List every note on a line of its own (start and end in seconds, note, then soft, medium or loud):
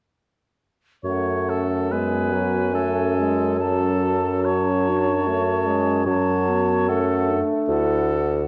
1.04 6.02 F#2 soft
1.04 1.93 A3 soft
1.04 1.88 C#4 soft
1.04 1.51 C#5 soft
1.04 1.93 F#5 soft
1.49 1.93 A4 soft
1.91 2.34 G#3 soft
1.91 2.75 B3 soft
1.91 2.74 B4 soft
1.91 3.61 G#5 soft
2.32 2.76 F#3 soft
2.74 3.16 A3 soft
2.74 4.45 C#4 soft
2.74 3.58 A4 soft
3.17 3.59 G#3 soft
3.59 5.29 F#3 soft
3.59 4.47 A4 soft
3.59 4.44 A5 soft
4.44 4.88 C#4 soft
4.44 6.06 C#5 soft
4.44 6.03 A5 soft
4.87 5.28 D4 soft
5.26 5.68 A3 soft
5.26 6.06 C#4 soft
5.66 6.08 G#3 soft
6.06 7.39 F#2 soft
6.06 6.90 F#3 soft
6.06 6.50 C#4 soft
6.06 6.86 C#5 soft
6.06 6.90 A5 soft
6.49 6.91 B3 soft
6.88 8.25 A3 soft
6.88 7.30 C#4 soft
6.88 7.41 A4 soft
6.88 7.42 F#5 soft
7.28 7.71 D4 soft
7.68 8.48 D2 soft
7.68 8.25 E4 soft
7.68 8.48 A4 soft
7.68 8.48 F#5 soft